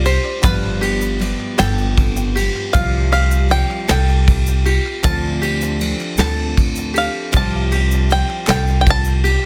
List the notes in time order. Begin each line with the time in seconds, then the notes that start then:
Already playing: C2 C3 F3 G3 C4 G4 C5
0.04 G3 F4 G4 C5, ride
0.24 clap
0.42 G1 G2 D3 F3 G3 B3 D4 F4 G4 B4, kick, clap, ride, shaker
0.81 G4, clap, ride
1.01 shaker
1.19 F3 G3 B3 G4, clap, ride
1.40 clap
1.58 G1 G2 D3 F3 G3 B3 G4 A4 G5, snare, clap, ride, shaker
1.78 shaker
1.98 kick, ride
2.17 shaker
2.35 F3 G3 B3 G4, ride
2.56 clap
2.73 C2 C3 F3 G3 C4 F4 G4 C5 F5, kick, clap, ride, shaker
3.12 G4 F5, clap, ride
3.31 shaker
3.49 F3 G3 F4 G4 G5, clap, ride
3.71 clap
3.87 C2 C3 F3 G3 F4 G4 A4 G5, snare, clap, ride, shaker
4.08 shaker
4.28 kick, ride
4.47 shaker
4.64 G3 F4 G4, ride
4.86 clap
5.03 D2 D3 F3 C4 D4 F4 A4 C5 A5, kick, clap, ride, shaker
5.42 G4, clap, ride, shaker
5.61 clap, shaker
5.79 F3 C4 D4 A4, clap, ride, shaker
5.99 clap, shaker
6.18 D2 D3 F3 C4 D4 A4 A5, snare, clap, ride, shaker
6.40 clap
6.57 kick, ride
6.76 shaker
6.94 C4 D4 G4 A4 F5, ride
7.32 C2 C3 F3 G3 C4 F4 G4 C5, kick, clap, ride, shaker
7.37 A5
7.72 G4, clap, ride
7.91 shaker
8.09 F3 G3 F4 G4 G5, clap, ride
8.30 clap
8.47 C2 C3 F3 G3 F4 G4 A4 G5, snare, clap, ride, shaker
8.67 shaker
8.81 G5
8.86 A5, kick, ride
9.05 shaker
9.24 F4 G4, ride
9.28 G3